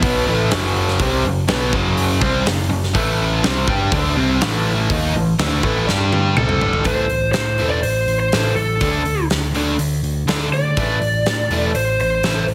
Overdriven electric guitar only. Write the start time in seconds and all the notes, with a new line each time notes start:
0.02 B2 F#3 B3
0.27 A2 E3 A3
0.51 F#2 C#3 F#3
1.01 C3 G3 C4
1.25 F#2 C#3
1.48 B2 F#3 B3
1.73 F#2 C#3 F#3
2.21 C3 G3 C4
2.46 F#2 C#3
2.69 F#2 C#3
2.94 A2 E3 A3
3.43 C3 G3 C4
3.68 G3 D4 G4
3.92 D3 A3 D4
4.17 C3 G3 C4
4.42 A2 E3 A3
4.90 D#3 A#3 D#4
5.14 A2 E3
5.39 D3 A3 D4
5.63 A2 E3 A3
5.87 G3 D4 G4
6.36 C3 G3 C4
6.61 G2 D3 G3
6.85 A2 E3 A3
7.59 A2 E3 A3
8.33 A2 E3 A3
8.81 D3 A3 D4
9.55 D3 A3 D4
10.27 D3 A3 D4
10.78 A2 E3 A3
11.51 A2 E3 A3
12.24 A2 E3 A3